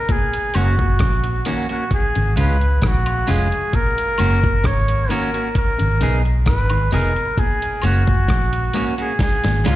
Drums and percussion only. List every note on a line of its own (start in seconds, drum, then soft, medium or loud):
0.09 kick loud
0.09 closed hi-hat medium
0.33 closed hi-hat medium
0.54 closed hi-hat medium
0.54 tambourine soft
0.54 high woodblock medium
0.79 kick loud
0.99 kick loud
0.99 cross-stick loud
0.99 closed hi-hat medium
1.24 closed hi-hat medium
1.45 closed hi-hat medium
1.45 tambourine medium
1.69 closed hi-hat soft
1.91 kick loud
1.91 closed hi-hat loud
2.15 closed hi-hat soft
2.37 closed hi-hat medium
2.37 tambourine soft
2.61 closed hi-hat soft
2.82 kick loud
2.82 cross-stick loud
2.82 closed hi-hat loud
3.06 closed hi-hat soft
3.06 high woodblock medium
3.27 open hi-hat medium
3.27 tambourine medium
3.52 closed hi-hat soft
3.73 kick loud
3.73 closed hi-hat medium
3.98 closed hi-hat medium
4.18 closed hi-hat medium
4.18 tambourine soft
4.18 high woodblock medium
4.44 kick loud
4.64 kick loud
4.64 cross-stick loud
4.64 closed hi-hat medium
4.88 closed hi-hat medium
5.10 closed hi-hat medium
5.10 tambourine medium
5.34 closed hi-hat soft
5.55 kick loud
5.55 closed hi-hat loud
5.79 closed hi-hat medium
6.01 closed hi-hat medium
6.01 tambourine medium
6.25 closed hi-hat soft
6.46 kick loud
6.46 cross-stick loud
6.46 closed hi-hat loud
6.70 closed hi-hat soft
6.70 high woodblock medium
6.91 open hi-hat medium
6.91 tambourine medium
7.16 closed hi-hat soft
7.38 kick loud
7.38 closed hi-hat medium
7.62 closed hi-hat medium
7.82 closed hi-hat medium
7.82 tambourine medium
7.82 high woodblock medium
8.07 kick loud
8.07 closed hi-hat soft
8.28 kick loud
8.28 cross-stick loud
8.28 closed hi-hat loud
8.53 closed hi-hat medium
8.73 closed hi-hat medium
8.73 tambourine medium
8.98 closed hi-hat soft
9.19 kick loud
9.19 snare medium
9.19 closed hi-hat loud
9.44 snare medium
9.44 closed hi-hat medium
9.65 snare medium
9.65 closed hi-hat medium
9.65 tambourine soft